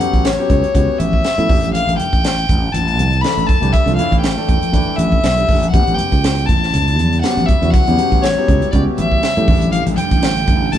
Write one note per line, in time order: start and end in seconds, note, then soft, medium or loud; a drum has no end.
0.00 0.27 F#3 medium
0.00 0.28 B3 medium
0.00 0.28 C#4 medium
0.00 0.28 G4 medium
0.00 0.26 F#5 medium
0.00 closed hi-hat medium
0.00 low conga medium
0.13 0.36 A1 medium
0.13 kick medium
0.13 closed hi-hat soft
0.24 1.00 C#5 medium
0.24 snare loud
0.24 closed hi-hat medium
0.38 0.65 F#3 medium
0.38 0.65 B3 medium
0.38 0.66 C#4 medium
0.38 0.66 G4 medium
0.50 0.62 C#2 medium
0.50 kick medium
0.50 closed hi-hat medium
0.50 low conga medium
0.64 muted fretless electric bass stroke soft
0.64 closed hi-hat soft
0.74 0.87 C#2 medium
0.74 1.21 B3 medium
0.74 1.21 C#4 medium
0.74 1.21 F#4 medium
0.74 1.21 G4 medium
0.74 kick medium
0.74 closed hi-hat medium
0.74 low conga medium
0.89 muted fretless electric bass stroke soft
0.99 1.22 A1 medium
0.99 1.73 E5 medium
0.99 closed hi-hat medium
0.99 high conga medium
1.13 kick medium
1.24 snare medium
1.24 closed hi-hat medium
1.37 1.48 A2 medium
1.37 1.49 F#3 medium
1.37 1.49 B3 medium
1.37 1.49 C#4 medium
1.37 1.50 E4 medium
1.37 closed hi-hat soft
1.37 high conga medium
1.48 1.84 A1 medium
1.48 2.29 E3 medium
1.48 2.29 A3 medium
1.48 2.30 D4 medium
1.48 2.30 G4 medium
1.48 kick medium
1.48 open hi-hat medium
1.48 low conga medium
1.63 closed hi-hat soft
1.63 high conga medium
1.74 1.97 F5 loud
1.74 closed hi-hat medium
1.87 1.98 A1 medium
1.87 closed hi-hat soft
1.87 high conga medium
1.98 2.73 G5 medium
1.98 closed hi-hat medium
1.98 low conga medium
2.13 2.46 A1 medium
2.13 kick medium
2.13 closed hi-hat soft
2.24 snare loud
2.24 closed hi-hat medium
2.38 closed hi-hat soft
2.49 2.72 A1 medium
2.49 kick medium
2.49 closed hi-hat medium
2.49 low conga medium
2.72 2.99 A1 medium
2.72 3.23 A5 medium
2.72 closed hi-hat medium
2.72 low conga medium
2.88 closed hi-hat soft
2.99 3.21 C2 medium
2.99 closed hi-hat medium
2.99 high conga medium
3.13 closed hi-hat soft
3.21 3.51 E3 medium
3.21 3.52 A3 medium
3.21 3.52 D4 medium
3.21 3.52 A4 medium
3.21 3.48 B5 loud
3.21 snare medium
3.21 closed hi-hat medium
3.37 3.48 A1 medium
3.37 closed hi-hat soft
3.37 high conga medium
3.47 3.74 A5 medium
3.47 kick medium
3.47 closed hi-hat medium
3.47 low conga medium
3.60 3.72 C2 medium
3.60 3.79 E3 medium
3.60 3.80 A3 medium
3.60 3.80 D4 medium
3.60 3.80 G4 medium
3.60 closed hi-hat soft
3.60 high conga medium
3.72 3.95 E5 medium
3.72 kick loud
3.72 closed hi-hat medium
3.86 3.97 C2 medium
3.86 3.95 E3 medium
3.86 3.95 A3 medium
3.86 3.96 D4 medium
3.86 3.96 F4 medium
3.86 closed hi-hat soft
3.86 high conga medium
3.96 4.27 E3 medium
3.96 4.27 A3 medium
3.96 4.27 D4 medium
3.96 4.27 E4 medium
3.96 4.20 F5 medium
3.96 closed hi-hat medium
3.96 low conga medium
4.12 4.35 A1 medium
4.12 kick medium
4.12 closed hi-hat soft
4.20 4.98 G5 medium
4.20 snare loud
4.20 closed hi-hat medium
4.36 4.64 E3 medium
4.36 4.65 A3 medium
4.36 4.65 D4 medium
4.36 4.65 A4 medium
4.49 4.61 A1 medium
4.49 kick medium
4.49 closed hi-hat medium
4.49 low conga medium
4.62 muted fretless electric bass stroke soft
4.62 closed hi-hat soft
4.62 high conga medium
4.72 4.86 A1 medium
4.72 5.20 E3 medium
4.72 5.20 A3 medium
4.72 5.20 D4 medium
4.72 5.20 E4 medium
4.72 kick medium
4.72 closed hi-hat medium
4.72 low conga medium
4.88 muted fretless electric bass stroke soft
4.96 5.21 A1 medium
4.96 5.70 E5 medium
4.96 closed hi-hat medium
4.96 high conga medium
5.12 kick medium
5.24 5.46 B1 medium
5.24 snare loud
5.24 closed hi-hat medium
5.36 5.64 E3 medium
5.36 5.65 A3 medium
5.36 5.65 D4 medium
5.36 5.65 G4 medium
5.36 closed hi-hat soft
5.49 5.71 A1 medium
5.49 kick medium
5.49 open hi-hat medium
5.49 low conga medium
5.63 closed hi-hat soft
5.63 high conga medium
5.71 5.86 A1 loud
5.71 9.45 C#3 medium
5.71 6.47 G3 medium
5.71 10.78 G3 medium
5.71 6.47 B3 medium
5.71 9.45 B3 medium
5.71 6.48 C#4 medium
5.71 9.45 E4 medium
5.71 6.48 G4 medium
5.71 5.96 F#5 medium
5.71 kick loud
5.71 closed hi-hat medium
5.87 5.98 A1 medium
5.87 closed hi-hat soft
5.87 high conga medium
5.95 6.48 G5 medium
5.95 closed hi-hat medium
5.99 low conga medium
6.12 6.45 C#2 medium
6.12 kick medium
6.12 closed hi-hat soft
6.24 snare loud
6.24 closed hi-hat medium
6.38 closed hi-hat soft
6.46 6.72 A1 medium
6.46 7.21 A5 medium
6.46 kick medium
6.46 closed hi-hat medium
6.46 low conga medium
6.63 snare soft
6.74 6.98 C#2 medium
6.74 closed hi-hat medium
6.74 low conga medium
6.88 closed hi-hat soft
6.98 7.21 E2 medium
6.98 closed hi-hat medium
6.98 high conga medium
7.13 closed hi-hat soft
7.22 7.51 F#3 medium
7.22 7.52 B3 medium
7.22 7.52 C#4 medium
7.22 7.52 G4 medium
7.22 7.47 F#5 medium
7.22 snare medium
7.22 closed hi-hat medium
7.37 7.48 A1 medium
7.37 closed hi-hat soft
7.37 high conga medium
7.46 7.72 E5 medium
7.46 kick medium
7.46 closed hi-hat medium
7.46 low conga medium
7.62 7.72 E2 medium
7.62 7.80 F#3 medium
7.62 7.80 B3 medium
7.62 7.81 C#4 medium
7.62 7.81 F#4 medium
7.62 closed hi-hat soft
7.62 high conga medium
7.71 8.23 F#5 loud
7.71 kick loud
7.71 closed hi-hat medium
7.87 7.98 E2 medium
7.87 7.96 F#3 medium
7.87 7.96 B3 medium
7.87 7.96 C#4 medium
7.87 7.97 G4 medium
7.87 closed hi-hat soft
7.87 high conga medium
7.98 8.26 F#3 medium
7.98 8.27 B3 medium
7.98 8.27 C#4 medium
7.98 8.27 G4 medium
7.98 closed hi-hat medium
7.98 low conga medium
8.12 8.35 A1 medium
8.12 kick medium
8.12 closed hi-hat soft
8.22 8.71 C#5 medium
8.22 snare loud
8.22 closed hi-hat medium
8.37 8.65 F#3 medium
8.37 8.65 B3 medium
8.37 8.65 C#4 medium
8.37 8.65 G4 medium
8.48 8.61 C#2 medium
8.48 kick medium
8.48 closed hi-hat medium
8.48 low conga medium
8.62 muted fretless electric bass stroke soft
8.62 closed hi-hat soft
8.71 8.86 C#2 medium
8.71 9.20 B3 medium
8.71 9.21 C#4 medium
8.71 9.20 F#4 medium
8.71 9.21 G4 medium
8.71 8.83 D5 medium
8.71 kick medium
8.71 closed hi-hat medium
8.71 low conga medium
8.87 muted fretless electric bass stroke soft
8.98 9.21 A1 medium
8.98 9.69 E5 medium
8.98 closed hi-hat medium
8.98 high conga medium
9.12 kick medium
9.23 snare medium
9.23 closed hi-hat medium
9.37 9.47 A2 medium
9.37 9.48 F#3 medium
9.37 9.49 B3 medium
9.37 9.49 C#4 medium
9.37 9.48 G4 medium
9.37 closed hi-hat soft
9.37 high conga medium
9.47 9.83 A1 loud
9.47 10.78 D3 medium
9.47 10.28 E3 medium
9.47 10.29 A3 medium
9.47 10.78 A3 medium
9.47 10.29 D4 medium
9.47 10.78 E4 medium
9.47 10.29 G4 medium
9.47 kick loud
9.47 open hi-hat medium
9.47 low conga medium
9.61 closed hi-hat soft
9.61 high conga medium
9.72 9.83 F5 medium
9.72 closed hi-hat medium
9.86 9.97 A1 medium
9.86 closed hi-hat soft
9.86 high conga medium
9.96 10.73 G5 medium
9.96 closed hi-hat medium
9.96 low conga medium
10.11 10.45 A1 medium
10.11 kick medium
10.11 closed hi-hat soft
10.23 snare loud
10.23 closed hi-hat medium
10.36 closed hi-hat soft
10.47 10.71 A1 medium
10.47 kick medium
10.47 closed hi-hat medium
10.47 low conga medium
10.72 10.78 A1 medium
10.72 10.78 A5 medium
10.72 closed hi-hat medium
10.72 low conga medium